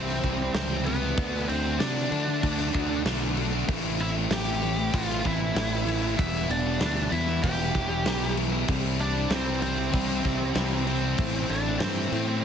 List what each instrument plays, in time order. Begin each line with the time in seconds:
Already playing: fingered electric bass C2, overdriven electric guitar C3 G3 C4, distorted electric guitar E3 G3 C4 E4, lead electric guitar C4 C5
0.07 distorted electric guitar G3 C4 E4, snare
0.21 fingered electric bass C2, overdriven electric guitar C3, distorted electric guitar E3 G3 C4 E4, kick, crash
0.39 muted distorted electric guitar stroke
0.53 fingered electric bass C#2, distorted electric guitar C3 E3 G3 C4 E4, lead electric guitar C4 C5, snare, crash
0.69 distorted electric guitar G3 C4 E4
0.85 overdriven electric guitar C3 G3 C4, distorted electric guitar E3 G3 C4 E4, lead electric guitar B3 B4, crash
1.01 distorted electric guitar G3 C4 E4
1.15 fingered electric bass D2, distorted electric guitar D3 A3 D4 F#4, kick, crash
1.47 fingered electric bass D2, distorted electric guitar D3 A3 D4 F#4, lead electric guitar C4 C5, crash
1.64 distorted electric guitar A3 D4 F#4
1.77 fingered electric bass C3, distorted electric guitar D3 A3 D4 F#4, lead electric guitar D4 D5, snare, crash
1.94 distorted electric guitar A3 D4 F#4
2.10 distorted electric guitar D3 A3 D4 F#4, fingered electric bass D3, overdriven electric guitar D3 A3 D4, muted distorted electric guitar stroke, crash
2.26 distorted electric guitar A3 D4 F#4, muted distorted electric guitar stroke
2.41 fingered electric bass D2, distorted electric guitar D3 A3 D4 F#4, kick, crash
2.58 distorted electric guitar A3 D4 F#4, snare
2.73 fingered electric bass D2, distorted electric guitar D3 A3 D4 F#4, kick, crash
2.89 muted distorted electric guitar stroke
3.05 fingered electric bass B1, distorted electric guitar D3 A3 D4 F#4, snare, crash
3.21 distorted electric guitar A3 D4 F#4
3.35 distorted electric guitar D3 A3 D4 F#4, overdriven electric guitar D3 A3 D4, crash
3.53 distorted electric guitar A3 D4 F#4
3.68 fingered electric bass A1, distorted electric guitar A2 E3 A3 C4 E4, kick, crash
3.98 overdriven electric guitar A2, distorted electric guitar E3 A3 C4, lead electric guitar E4 E5, crash
4.03 distorted electric guitar E4
4.15 distorted electric guitar A3 C4 E4
4.30 fingered electric bass A1, distorted electric guitar A2 E3 A3 C4 E4, lead electric guitar G4 G5, snare, crash
4.46 distorted electric guitar A3 C4 E4
4.62 overdriven electric guitar A2 E3 A3, distorted electric guitar E3 A3 C4 E4, muted distorted electric guitar stroke, crash
4.77 distorted electric guitar A3 C4 E4, muted distorted electric guitar stroke
4.92 fingered electric bass A1, overdriven electric guitar A2, distorted electric guitar E3 A3 C4, lead electric guitar F4 F5, kick, crash
4.97 distorted electric guitar E4
5.08 distorted electric guitar A3 C4 E4, snare
5.23 fingered electric bass A1, overdriven electric guitar A2, distorted electric guitar E3 A3 C4 E4, lead electric guitar E4, kick, crash
5.27 lead electric guitar E5
5.41 muted distorted electric guitar stroke
5.54 fingered electric bass A1, distorted electric guitar A2 E3 A3 C4 E4, snare, crash
5.70 distorted electric guitar A3 C4 E4
5.85 overdriven electric guitar A2 E3 A3, distorted electric guitar E3 A3 C4, crash
5.89 distorted electric guitar E4
6.02 distorted electric guitar A3 C4 E4
6.16 fingered electric bass E1, overdriven electric guitar E2 B2, distorted electric guitar E3 G3 B3 E4, lead electric guitar E4 E5, kick, crash
6.48 fingered electric bass E1, overdriven electric guitar E2 B2, distorted electric guitar E3 G3 B3 E4, lead electric guitar D4 D5, crash
6.64 distorted electric guitar G3 B3 E4
6.79 fingered electric bass D2, overdriven electric guitar E2 B2, distorted electric guitar E3 G3 B3 E4, snare, crash
6.95 distorted electric guitar G3 B3 E4
7.11 overdriven electric guitar E2 B2 E3, fingered electric bass E2, distorted electric guitar E3 G3 B3 E4, lead electric guitar E4 E5, muted distorted electric guitar stroke, crash
7.27 distorted electric guitar G3 B3 E4, muted distorted electric guitar stroke
7.42 fingered electric bass E1, overdriven electric guitar E2 B2, distorted electric guitar E3 G3 B3 E4, lead electric guitar G4 G5, kick, crash
7.58 distorted electric guitar G3 B3 E4, snare
7.72 fingered electric bass E1, overdriven electric guitar E2 B2, distorted electric guitar E3 G3, kick, crash
7.77 distorted electric guitar B3 E4
7.90 muted distorted electric guitar stroke
8.04 fingered electric bass B1, overdriven electric guitar E2 B2, distorted electric guitar E3 G3, snare, crash
8.08 distorted electric guitar B3 E4
8.22 distorted electric guitar G3 B3 E4
8.35 overdriven electric guitar E2 B2 E3, distorted electric guitar E3 G3 B3, crash
8.40 distorted electric guitar E4
8.52 distorted electric guitar G3 B3 E4
8.68 fingered electric bass C2, distorted electric guitar C3 E3 G3 C4 E4, kick, crash
8.99 distorted electric guitar C3 G3 C4 E4, lead electric guitar D4 D5, crash
9.14 distorted electric guitar G3 C4 E4
9.30 fingered electric bass C2, distorted electric guitar C3 E3 G3 C4 E4, lead electric guitar C4 C5, snare, crash
9.46 distorted electric guitar G3 C4 E4
9.61 overdriven electric guitar C3 G3 C4, distorted electric guitar E3 G3 C4 E4, lead electric guitar C4 C5, muted distorted electric guitar stroke, crash
9.76 distorted electric guitar G3 C4 E4, muted distorted electric guitar stroke
9.92 fingered electric bass C2, distorted electric guitar C3 E3 G3 C4 E4, kick, crash
10.08 distorted electric guitar G3 C4 E4
10.22 fingered electric bass C2, distorted electric guitar C3 E3 G3 C4, kick, crash
10.26 distorted electric guitar E4
10.39 muted distorted electric guitar stroke
10.55 fingered electric bass C2, distorted electric guitar C3 E3 G3 C4 E4, snare, crash
10.70 distorted electric guitar G3 C4 E4
10.85 overdriven electric guitar C3 G3 C4, distorted electric guitar E3 G3 C4 E4, lead electric guitar C4 C5, crash
11.02 distorted electric guitar G3 C4 E4
11.17 fingered electric bass A1, distorted electric guitar A2 E3 A3 C4 E4, kick, crash
11.49 fingered electric bass A1, overdriven electric guitar A2, distorted electric guitar E3 A3 C4 E4, lead electric guitar D4 D5, crash
11.65 distorted electric guitar A3 C4 E4
11.79 fingered electric bass G2, distorted electric guitar A2 E3 A3 C4, lead electric guitar C4 C5, snare, crash
11.83 distorted electric guitar E4
11.96 distorted electric guitar A3 C4 E4
12.11 fingered electric bass A2, overdriven electric guitar A2 E3 A3, distorted electric guitar E3 A3 C4 E4, muted distorted electric guitar stroke, crash
12.27 distorted electric guitar A3 C4 E4, muted distorted electric guitar stroke